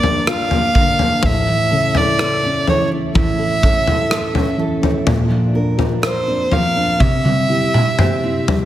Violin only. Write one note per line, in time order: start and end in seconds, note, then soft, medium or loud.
0.00 0.26 D5 medium
0.30 1.27 F5 medium
1.26 1.99 E5 medium
1.97 2.68 D5 medium
2.69 2.89 C#5 medium
3.17 4.56 E5 medium
6.04 6.54 C5 medium
6.52 7.01 F5 medium
7.00 8.48 E5 medium